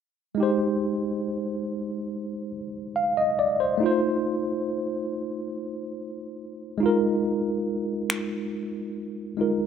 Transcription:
0, 0, Header, 1, 3, 480
1, 0, Start_track
1, 0, Tempo, 857143
1, 214, Time_signature, 4, 2, 24, 8
1, 5412, End_track
2, 0, Start_track
2, 0, Title_t, "Tine electric piano"
2, 0, Program_c, 0, 4
2, 194, Note_on_c, 0, 56, 64
2, 210, Note_on_c, 0, 63, 57
2, 225, Note_on_c, 0, 67, 58
2, 239, Note_on_c, 0, 72, 70
2, 319, Control_c, 0, 64, 127
2, 1404, Note_off_c, 0, 72, 0
2, 1657, Note_on_c, 0, 77, 58
2, 1769, Note_off_c, 0, 77, 0
2, 1777, Note_on_c, 0, 75, 65
2, 1889, Note_off_c, 0, 75, 0
2, 1898, Note_on_c, 0, 74, 64
2, 2010, Note_off_c, 0, 74, 0
2, 2017, Note_on_c, 0, 72, 62
2, 2102, Note_off_c, 0, 56, 0
2, 2110, Note_off_c, 0, 63, 0
2, 2115, Note_on_c, 0, 57, 61
2, 2117, Note_off_c, 0, 67, 0
2, 2130, Note_on_c, 0, 63, 60
2, 2141, Control_c, 0, 64, 0
2, 2146, Note_on_c, 0, 65, 63
2, 2154, Note_off_c, 0, 72, 0
2, 2161, Note_on_c, 0, 72, 71
2, 2226, Control_c, 0, 64, 127
2, 3782, Note_off_c, 0, 57, 0
2, 3789, Note_off_c, 0, 63, 0
2, 3795, Note_on_c, 0, 56, 64
2, 3797, Note_off_c, 0, 65, 0
2, 3805, Note_off_c, 0, 72, 0
2, 3809, Note_on_c, 0, 63, 58
2, 3821, Control_c, 0, 64, 0
2, 3824, Note_on_c, 0, 65, 64
2, 3840, Note_on_c, 0, 70, 74
2, 3921, Control_c, 0, 64, 127
2, 5222, Note_off_c, 0, 56, 0
2, 5229, Note_off_c, 0, 63, 0
2, 5237, Note_off_c, 0, 65, 0
2, 5244, Note_off_c, 0, 70, 0
2, 5247, Note_on_c, 0, 56, 50
2, 5255, Note_on_c, 0, 63, 47
2, 5263, Note_on_c, 0, 65, 45
2, 5270, Note_on_c, 0, 70, 55
2, 5412, Note_off_c, 0, 56, 0
2, 5412, Note_off_c, 0, 63, 0
2, 5412, Note_off_c, 0, 65, 0
2, 5412, Note_off_c, 0, 70, 0
2, 5412, End_track
3, 0, Start_track
3, 0, Title_t, "Drums"
3, 4536, Note_on_c, 9, 26, 99
3, 4592, Note_off_c, 9, 26, 0
3, 5412, End_track
0, 0, End_of_file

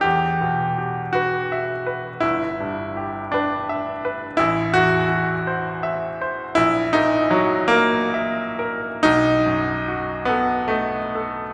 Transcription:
0, 0, Header, 1, 2, 480
1, 0, Start_track
1, 0, Tempo, 724638
1, 35, Time_signature, 6, 3, 24, 8
1, 3874, Tempo, 745342
1, 4834, Tempo, 792602
1, 5314, Tempo, 902256
1, 5794, Tempo, 836820
1, 6754, Tempo, 890208
1, 7200, End_track
2, 0, Start_track
2, 0, Title_t, "Grand piano"
2, 0, Program_c, 0, 0
2, 0, Control_c, 0, 64, 127
2, 7, Note_on_c, 0, 67, 79
2, 26, Note_on_c, 0, 40, 50
2, 47, Control_c, 0, 64, 0
2, 139, Control_c, 0, 64, 127
2, 272, Note_on_c, 0, 47, 39
2, 509, Note_off_c, 0, 67, 0
2, 519, Note_on_c, 0, 67, 34
2, 668, Note_off_c, 0, 47, 0
2, 746, Note_on_c, 0, 66, 79
2, 760, Note_on_c, 0, 71, 40
2, 908, Note_off_c, 0, 67, 0
2, 1007, Note_on_c, 0, 76, 41
2, 1140, Note_off_c, 0, 71, 0
2, 1235, Note_on_c, 0, 71, 42
2, 1383, Note_off_c, 0, 76, 0
2, 1447, Note_off_c, 0, 40, 0
2, 1460, Note_on_c, 0, 64, 79
2, 1467, Note_off_c, 0, 66, 0
2, 1477, Note_off_c, 0, 71, 0
2, 1478, Note_on_c, 0, 31, 52
2, 1490, Control_c, 0, 64, 0
2, 1589, Control_c, 0, 64, 127
2, 1723, Note_on_c, 0, 43, 41
2, 1966, Note_on_c, 0, 67, 37
2, 2114, Note_off_c, 0, 43, 0
2, 2196, Note_on_c, 0, 62, 70
2, 2200, Note_off_c, 0, 64, 0
2, 2212, Note_on_c, 0, 71, 45
2, 2350, Note_off_c, 0, 67, 0
2, 2438, Note_off_c, 0, 62, 0
2, 2447, Note_on_c, 0, 76, 45
2, 2586, Note_off_c, 0, 71, 0
2, 2681, Note_on_c, 0, 71, 43
2, 2821, Note_off_c, 0, 76, 0
2, 2888, Note_off_c, 0, 31, 0
2, 2894, Note_on_c, 0, 64, 88
2, 2910, Note_on_c, 0, 33, 59
2, 2917, Note_off_c, 0, 71, 0
2, 2928, Control_c, 0, 64, 0
2, 3019, Control_c, 0, 64, 127
2, 3137, Note_on_c, 0, 66, 94
2, 3143, Note_off_c, 0, 64, 0
2, 3150, Note_on_c, 0, 40, 45
2, 3369, Note_off_c, 0, 66, 0
2, 3379, Note_on_c, 0, 66, 43
2, 3532, Note_off_c, 0, 40, 0
2, 3624, Note_on_c, 0, 72, 49
2, 3770, Note_off_c, 0, 66, 0
2, 3862, Note_on_c, 0, 76, 50
2, 4013, Note_off_c, 0, 72, 0
2, 4110, Note_on_c, 0, 72, 50
2, 4249, Note_off_c, 0, 76, 0
2, 4321, Note_off_c, 0, 33, 0
2, 4326, Note_on_c, 0, 64, 98
2, 4339, Note_on_c, 0, 34, 60
2, 4349, Note_off_c, 0, 72, 0
2, 4359, Control_c, 0, 64, 0
2, 4474, Control_c, 0, 64, 127
2, 4569, Note_on_c, 0, 63, 96
2, 4579, Note_off_c, 0, 64, 0
2, 4582, Note_on_c, 0, 46, 47
2, 4812, Note_on_c, 0, 54, 75
2, 4823, Note_off_c, 0, 63, 0
2, 4829, Note_on_c, 0, 66, 47
2, 4968, Note_off_c, 0, 46, 0
2, 5039, Note_on_c, 0, 58, 96
2, 5055, Note_off_c, 0, 54, 0
2, 5057, Note_on_c, 0, 70, 50
2, 5209, Note_off_c, 0, 66, 0
2, 5318, Note_on_c, 0, 76, 51
2, 5453, Note_off_c, 0, 70, 0
2, 5557, Note_on_c, 0, 70, 52
2, 5702, Note_off_c, 0, 76, 0
2, 5769, Note_off_c, 0, 34, 0
2, 5782, Note_off_c, 0, 58, 0
2, 5791, Note_on_c, 0, 63, 103
2, 5795, Note_off_c, 0, 70, 0
2, 5803, Note_on_c, 0, 35, 65
2, 5807, Control_c, 0, 64, 0
2, 5906, Control_c, 0, 64, 127
2, 6039, Note_on_c, 0, 42, 46
2, 6280, Note_on_c, 0, 66, 42
2, 6413, Note_off_c, 0, 42, 0
2, 6494, Note_on_c, 0, 59, 83
2, 6506, Note_off_c, 0, 63, 0
2, 6510, Note_on_c, 0, 69, 48
2, 6659, Note_off_c, 0, 66, 0
2, 6736, Note_on_c, 0, 57, 78
2, 6746, Note_off_c, 0, 59, 0
2, 6750, Note_on_c, 0, 75, 42
2, 6897, Note_off_c, 0, 69, 0
2, 6994, Note_on_c, 0, 69, 41
2, 7134, Note_off_c, 0, 75, 0
2, 7200, Note_off_c, 0, 35, 0
2, 7200, Note_off_c, 0, 57, 0
2, 7200, Note_off_c, 0, 69, 0
2, 7200, End_track
0, 0, End_of_file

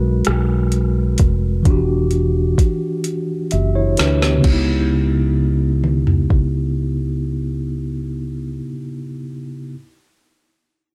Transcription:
0, 0, Header, 1, 4, 480
1, 0, Start_track
1, 0, Key_signature, 4, "minor"
1, 0, Tempo, 930233
1, 852, Time_signature, 6, 3, 24, 8
1, 5648, End_track
2, 0, Start_track
2, 0, Title_t, "Tine electric piano"
2, 0, Program_c, 0, 4
2, 0, Control_c, 0, 64, 127
2, 0, Note_on_c, 0, 56, 75
2, 0, Note_on_c, 0, 66, 65
2, 0, Note_on_c, 0, 70, 60
2, 0, Note_on_c, 0, 71, 80
2, 826, Note_off_c, 0, 56, 0
2, 832, Note_off_c, 0, 66, 0
2, 839, Note_off_c, 0, 70, 0
2, 840, Note_on_c, 0, 52, 65
2, 846, Note_off_c, 0, 71, 0
2, 853, Note_on_c, 0, 62, 58
2, 858, Control_c, 0, 64, 0
2, 865, Note_on_c, 0, 66, 58
2, 880, Note_on_c, 0, 67, 70
2, 961, Control_c, 0, 64, 127
2, 1558, Note_off_c, 0, 62, 0
2, 1565, Note_off_c, 0, 66, 0
2, 1572, Note_off_c, 0, 67, 0
2, 1816, Note_on_c, 0, 76, 49
2, 1819, Note_on_c, 0, 67, 36
2, 1928, Note_off_c, 0, 76, 0
2, 1930, Note_off_c, 0, 67, 0
2, 1937, Note_on_c, 0, 73, 58
2, 1940, Note_on_c, 0, 64, 52
2, 2049, Note_off_c, 0, 73, 0
2, 2050, Note_off_c, 0, 64, 0
2, 2056, Note_on_c, 0, 71, 54
2, 2058, Note_on_c, 0, 62, 46
2, 2168, Note_off_c, 0, 71, 0
2, 2169, Note_off_c, 0, 62, 0
2, 2177, Note_on_c, 0, 67, 49
2, 2181, Note_on_c, 0, 59, 41
2, 2255, Note_on_c, 0, 49, 66
2, 2265, Note_off_c, 0, 52, 0
2, 2275, Note_off_c, 0, 59, 0
2, 2281, Note_on_c, 0, 59, 56
2, 2300, Control_c, 0, 64, 0
2, 2309, Note_on_c, 0, 63, 55
2, 2335, Note_on_c, 0, 64, 71
2, 2403, Note_off_c, 0, 67, 0
2, 2404, Control_c, 0, 64, 127
2, 4393, Note_off_c, 0, 49, 0
2, 4420, Note_off_c, 0, 59, 0
2, 4447, Note_off_c, 0, 63, 0
2, 4474, Note_off_c, 0, 64, 0
2, 5029, Control_c, 0, 64, 0
2, 5648, End_track
3, 0, Start_track
3, 0, Title_t, "Fretless electric bass"
3, 0, Program_c, 1, 35
3, 0, Note_on_c, 1, 35, 73
3, 114, Note_off_c, 1, 35, 0
3, 143, Note_on_c, 1, 35, 83
3, 597, Note_off_c, 1, 35, 0
3, 622, Note_on_c, 1, 29, 68
3, 837, Note_off_c, 1, 29, 0
3, 859, Note_on_c, 1, 28, 99
3, 1315, Note_off_c, 1, 28, 0
3, 1822, Note_on_c, 1, 30, 69
3, 2037, Note_off_c, 1, 30, 0
3, 2062, Note_on_c, 1, 38, 73
3, 2277, Note_off_c, 1, 38, 0
3, 2297, Note_on_c, 1, 37, 79
3, 4435, Note_off_c, 1, 37, 0
3, 5648, End_track
4, 0, Start_track
4, 0, Title_t, "Drums"
4, 127, Note_on_c, 9, 42, 53
4, 138, Note_on_c, 9, 37, 93
4, 179, Note_off_c, 9, 42, 0
4, 190, Note_off_c, 9, 37, 0
4, 370, Note_on_c, 9, 42, 42
4, 422, Note_off_c, 9, 42, 0
4, 608, Note_on_c, 9, 42, 59
4, 617, Note_on_c, 9, 36, 71
4, 660, Note_off_c, 9, 42, 0
4, 669, Note_off_c, 9, 36, 0
4, 853, Note_on_c, 9, 42, 57
4, 854, Note_on_c, 9, 36, 91
4, 905, Note_off_c, 9, 36, 0
4, 905, Note_off_c, 9, 42, 0
4, 1087, Note_on_c, 9, 42, 36
4, 1139, Note_off_c, 9, 42, 0
4, 1332, Note_on_c, 9, 36, 76
4, 1335, Note_on_c, 9, 42, 63
4, 1383, Note_off_c, 9, 36, 0
4, 1387, Note_off_c, 9, 42, 0
4, 1569, Note_on_c, 9, 42, 50
4, 1621, Note_off_c, 9, 42, 0
4, 1810, Note_on_c, 9, 42, 44
4, 1862, Note_off_c, 9, 42, 0
4, 2050, Note_on_c, 9, 42, 60
4, 2061, Note_on_c, 9, 38, 73
4, 2101, Note_off_c, 9, 42, 0
4, 2113, Note_off_c, 9, 38, 0
4, 2179, Note_on_c, 9, 38, 66
4, 2231, Note_off_c, 9, 38, 0
4, 2291, Note_on_c, 9, 49, 67
4, 2292, Note_on_c, 9, 36, 80
4, 2343, Note_off_c, 9, 49, 0
4, 2344, Note_off_c, 9, 36, 0
4, 3011, Note_on_c, 9, 47, 46
4, 3063, Note_off_c, 9, 47, 0
4, 3132, Note_on_c, 9, 43, 60
4, 3184, Note_off_c, 9, 43, 0
4, 3253, Note_on_c, 9, 36, 66
4, 3304, Note_off_c, 9, 36, 0
4, 5648, End_track
0, 0, End_of_file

